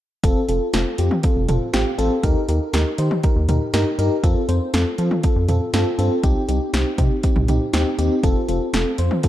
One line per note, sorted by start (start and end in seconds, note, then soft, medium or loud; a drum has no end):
0.24 0.34 F1 loud
0.24 0.41 C4 loud
0.24 0.41 F4 medium
0.24 0.41 A4 loud
0.24 kick loud
0.24 closed hi-hat medium
0.49 0.59 F1 medium
0.49 0.66 C4 medium
0.49 0.66 F4 medium
0.49 0.66 A4 medium
0.49 closed hi-hat medium
0.73 0.84 F1 loud
0.73 0.91 C4 medium
0.73 0.91 F4 medium
0.73 0.91 A4 medium
0.73 snare loud
0.73 closed hi-hat medium
0.98 1.09 F2 medium
0.98 1.16 C4 medium
0.98 1.16 F4 medium
0.98 1.16 G4 medium
0.98 closed hi-hat medium
1.11 mid tom medium
1.23 1.41 C4 medium
1.23 1.41 F4 medium
1.23 1.41 A4 medium
1.23 kick medium
1.23 closed hi-hat medium
1.36 1.47 F1 medium
1.48 1.59 F1 medium
1.48 1.66 C4 medium
1.48 1.66 F4 medium
1.48 1.66 A4 medium
1.48 closed hi-hat medium
1.48 mid tom medium
1.73 1.84 A1 medium
1.73 1.91 C4 loud
1.73 1.91 F4 medium
1.73 1.91 G4 loud
1.73 snare loud
1.73 closed hi-hat medium
1.98 2.09 A1 medium
1.98 2.16 C4 loud
1.98 2.16 F4 loud
1.98 2.16 A4 loud
1.98 closed hi-hat medium
2.23 2.34 D#2 loud
2.23 2.41 D#4 loud
2.23 2.41 G4 loud
2.23 2.41 A#4 loud
2.23 kick loud
2.23 closed hi-hat medium
2.48 2.59 D#2 loud
2.48 2.66 D#4 medium
2.48 2.66 G4 medium
2.48 2.66 A#4 medium
2.48 closed hi-hat medium
2.73 2.84 D#2 loud
2.73 2.91 D#4 medium
2.73 2.91 G4 medium
2.73 2.91 A#4 medium
2.73 snare loud
2.73 closed hi-hat medium
2.98 3.09 D#3 medium
2.98 3.16 D#4 medium
2.98 3.16 G4 medium
2.98 3.16 C5 medium
2.98 closed hi-hat medium
3.11 mid tom medium
3.23 3.41 D#4 medium
3.23 3.41 G4 medium
3.23 3.41 A#4 medium
3.23 kick medium
3.23 closed hi-hat medium
3.36 3.47 D#2 loud
3.48 3.59 D#2 loud
3.48 3.66 D#4 medium
3.48 3.66 G4 medium
3.48 3.66 A#4 medium
3.48 closed hi-hat medium
3.48 mid tom medium
3.73 3.84 G2 medium
3.73 3.91 D#4 loud
3.73 3.91 G4 loud
3.73 3.91 A#4 loud
3.73 snare loud
3.73 closed hi-hat medium
3.98 4.09 G2 medium
3.98 4.16 D#4 loud
3.98 4.16 G4 loud
3.98 4.16 A#4 loud
3.98 closed hi-hat medium
4.24 4.34 F2 loud
4.24 4.41 C4 loud
4.24 4.41 F4 loud
4.24 4.41 A4 loud
4.24 kick loud
4.24 closed hi-hat medium
4.49 4.59 F2 loud
4.49 4.66 C4 medium
4.49 4.66 F4 medium
4.49 4.66 C5 medium
4.49 closed hi-hat medium
4.74 4.84 F2 loud
4.74 4.91 C4 medium
4.74 4.91 F4 medium
4.74 4.91 A4 medium
4.74 snare loud
4.74 closed hi-hat medium
4.98 5.09 F3 medium
4.98 5.16 C4 medium
4.98 5.16 F4 medium
4.98 5.16 A4 medium
4.98 closed hi-hat medium
5.11 mid tom medium
5.23 5.41 C4 medium
5.23 5.41 F4 medium
5.23 5.41 A4 medium
5.23 kick medium
5.23 closed hi-hat medium
5.36 5.47 F2 medium
5.48 5.59 F2 loud
5.48 5.66 C4 medium
5.48 5.66 F4 medium
5.48 5.66 A4 medium
5.48 closed hi-hat medium
5.48 mid tom medium
5.73 5.84 G2 medium
5.73 5.91 C4 loud
5.73 5.91 F4 loud
5.73 5.91 A4 loud
5.73 snare loud
5.73 closed hi-hat medium
5.98 6.09 G2 medium
5.98 6.16 C4 loud
5.98 6.16 F4 medium
5.98 6.16 A4 loud
5.98 closed hi-hat medium
6.24 6.34 C2 loud
6.24 6.41 C4 loud
6.24 6.41 D#4 medium
6.24 6.41 G4 loud
6.24 kick loud
6.24 closed hi-hat medium
6.48 6.59 C2 loud
6.48 6.66 C4 medium
6.48 6.66 D#4 medium
6.48 6.66 G4 medium
6.48 closed hi-hat medium
6.73 6.84 C2 medium
6.73 6.91 C4 medium
6.73 6.91 D#4 medium
6.73 6.91 G4 medium
6.73 snare loud
6.73 closed hi-hat medium
6.98 7.09 C3 loud
6.98 7.16 C4 medium
6.98 7.16 D#4 medium
6.98 7.16 G4 medium
6.98 kick medium
6.98 closed hi-hat medium
7.23 7.41 C4 medium
7.23 7.41 D#4 medium
7.23 7.41 G4 medium
7.23 kick medium
7.23 closed hi-hat medium
7.36 7.47 C2 medium
7.36 mid tom medium
7.48 7.59 C2 loud
7.48 7.66 C4 medium
7.48 7.66 D#4 medium
7.48 7.66 G4 medium
7.48 closed hi-hat medium
7.48 mid tom medium
7.73 7.84 D#2 medium
7.73 7.91 C4 loud
7.73 7.91 D#4 medium
7.73 7.91 G4 loud
7.73 snare loud
7.73 closed hi-hat medium
7.99 8.09 D#2 loud
7.99 8.16 C4 loud
7.99 8.16 D#4 loud
7.99 8.16 G4 loud
7.99 closed hi-hat medium
8.23 8.34 F1 loud
8.23 8.41 C4 loud
8.23 8.41 F4 loud
8.23 8.41 A4 loud
8.23 kick loud
8.23 closed hi-hat medium
8.49 8.59 F1 medium
8.49 8.66 C4 medium
8.49 8.66 F4 medium
8.49 8.66 A4 medium
8.49 closed hi-hat medium
8.73 8.84 F1 loud
8.73 8.91 C4 medium
8.73 8.91 F4 medium
8.73 8.91 A4 medium
8.73 snare loud
8.73 closed hi-hat medium
8.98 9.09 F2 medium
8.98 9.16 C4 medium
8.98 9.16 F4 medium
8.98 9.16 C5 medium
8.98 closed hi-hat medium
9.11 mid tom medium
9.23 9.28 C4 medium
9.23 9.28 F4 medium
9.23 9.28 A4 medium
9.23 kick medium
9.23 closed hi-hat medium